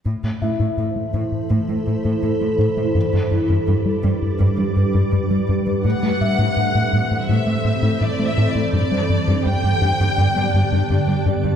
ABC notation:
X:1
M:4/4
L:1/16
Q:1/4=83
K:Ador
V:1 name="Felt piano"
z2 [Ee]12 z2 | z16 | z2 e12 z2 | z16 |]
V:2 name="Violin section"
z16 | z16 | f8 e4 (3d2 e2 d2 | d4 g8- g2 z2 |]
V:3 name="Synth drone"
[E,EAc]16 | [G,DGB]16 | [E,CAc]16 | [D,B,Gd]16 |]
V:4 name="Analog synth bass" clef=bass
A,, A,, A,, A,, A,, A, A,, A,, A,, A, A,, A,, A,, A, A,, A, | G,, G,, G,, G,, G,, G, G,, G,, G,, G, G,, G,, G,, G, G,, G, | A,, A, A,, A,, A,, A,, A,, A,, A,, A, A,, A,, A,, A, A,, A,, | G,, G, G,, G,, G,, G,, G,, G,, G,, G, G,, G,, G,, G, G,, G,, |]
V:5 name="Cello section" clef=bass
A,, A,, A,, A,, A,, z A,, z A,, A,, A,, A,, A,, A,, A,, A,, | G,, G,, G,, G,, G,, z G,, z G,, G,, G,, G,, G,, G,, G,, G,, | A,, A,, z A,, A,, A,, A,, A,, A,, A,, A,, A,, A,, A,, A,, A,, | G,, G,, z G,, G,, G,, G,, G,, G,, G,, G,, G,, G,, G,, G,, G,, |]